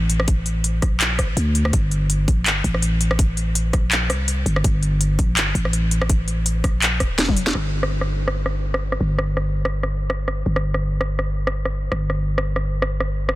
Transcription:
Already playing: A1
0.10 closed hi-hat
0.20 cross-stick
0.28 kick, closed hi-hat
0.46 closed hi-hat
0.64 closed hi-hat
0.82 A#1, kick, cross-stick, closed hi-hat
1.01 clap, closed hi-hat
1.19 A1, kick, cross-stick, closed hi-hat
1.37 D2, closed hi-hat
1.55 closed hi-hat
1.65 cross-stick
1.73 G1, kick, closed hi-hat
1.91 closed hi-hat
2.10 closed hi-hat
2.28 A#1, kick, closed hi-hat
2.46 G1, clap, closed hi-hat
2.64 A1, kick, closed hi-hat
2.74 cross-stick
2.82 closed hi-hat
3.01 closed hi-hat
3.11 cross-stick
3.19 kick, closed hi-hat
3.37 closed hi-hat
3.55 closed hi-hat
3.73 A#1, kick, cross-stick, closed hi-hat
3.92 clap, closed hi-hat
4.10 C2, cross-stick, closed hi-hat
4.28 closed hi-hat
4.46 G1, closed hi-hat
4.56 cross-stick
4.64 G1, kick, closed hi-hat
4.83 closed hi-hat
5.01 closed hi-hat
5.19 A#1, kick, closed hi-hat
5.37 G1, clap, closed hi-hat
5.55 A1, kick, closed hi-hat
5.65 cross-stick
5.73 closed hi-hat
5.91 closed hi-hat
6.02 cross-stick
6.10 kick, closed hi-hat
6.28 closed hi-hat
6.46 closed hi-hat
6.64 A#1, kick, cross-stick, closed hi-hat
6.82 clap, closed hi-hat
7.00 D1, kick, cross-stick, closed hi-hat
7.18 F1, snare, closed hi-hat
7.28 kick, high tom
7.37 closed hi-hat
7.47 snare
7.55 G1, cross-stick
7.83 cross-stick
8.01 cross-stick
8.28 cross-stick
8.46 cross-stick
8.74 cross-stick
8.92 cross-stick
9.01 G1
9.19 cross-stick
9.37 cross-stick
9.65 cross-stick
9.83 cross-stick
10.10 cross-stick
10.28 cross-stick
10.46 G1
10.56 cross-stick
10.74 cross-stick
11.01 cross-stick
11.19 cross-stick
11.47 cross-stick
11.65 cross-stick
11.92 G1, cross-stick
12.10 cross-stick
12.38 cross-stick
12.56 cross-stick
12.82 cross-stick
13.00 cross-stick
13.29 cross-stick

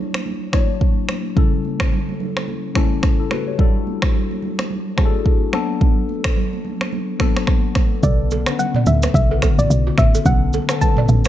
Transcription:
Already playing: F#3 D4 E4 C#5
0.14 finger snap, cross-stick, high conga
0.26 low conga
0.52 F#3 D4 E4 C#5, finger snap, kick, cross-stick, high conga
0.81 kick, high conga
1.09 finger snap, cross-stick, high conga
1.35 C#3 G3 C#4 E4 A4, kick, low conga
1.65 high conga
1.80 finger snap, kick, cross-stick
1.92 low conga
2.09 high conga
2.20 low conga
2.36 finger snap, cross-stick, high conga
2.48 low conga
2.74 C#3 G3 C#4 E4 A4, finger snap, kick, cross-stick, high conga
3.03 finger snap, kick, cross-stick, high conga
3.20 E4 A4
3.31 F#4 B4, finger snap, cross-stick, high conga
3.47 G4 C#5
3.58 G3 D4 E4 F#4 A4, kick, low conga
3.87 high conga
4.02 finger snap, kick, cross-stick
4.15 low conga
4.31 high conga
4.42 low conga
4.59 finger snap, cross-stick, high conga
4.70 low conga
4.97 G3 D4 E4 F#4 G#4, finger snap, kick, cross-stick, high conga
5.06 A4
5.26 kick, high conga
5.52 F#3 B3 D4 A4, finger snap, cross-stick, high conga
5.81 kick, low conga
6.09 high conga
6.24 finger snap, kick, cross-stick
6.37 low conga
6.53 high conga
6.65 low conga
6.81 finger snap, cross-stick, high conga
6.92 low conga
7.19 F#3 B3 D4 A4, finger snap, kick, cross-stick, high conga
7.37 finger snap, cross-stick
7.47 finger snap, kick, cross-stick, high conga
7.75 finger snap, kick, cross-stick, high conga
8.02 B1 C#3 D3 B3 A4 D5, kick, low conga, shaker
8.31 A4, high conga, shaker
8.46 D3 B3 C#4 B4, finger snap, cross-stick, shaker
8.59 F#5, low conga, shaker
8.74 D5, mid tom, high conga
8.86 D2 E5, mid tom, low conga, shaker
9.03 B4, finger snap, cross-stick, high conga, shaker
9.14 B1 E5, kick, low conga, shaker
9.29 C#3 D3 B3 E4 A4
9.38 F#4, finger snap, high conga
9.42 A4, kick, cross-stick, shaker
9.58 A1 D5, shaker
9.70 B1, shaker
9.87 F#4
9.98 A1 E5, finger snap, kick, cross-stick, high conga, shaker
10.15 A4, shaker
10.24 B1 D3 B3 C#4 A4 F#5, kick, low conga, shaker
10.53 A4, high conga, shaker
10.68 D3 B3 C#4 A4 B4, finger snap, cross-stick, shaker
10.81 A5, kick, low conga, shaker
10.97 D5, mid tom, high conga
11.08 A1, mid tom, low conga, shaker
11.25 shaker

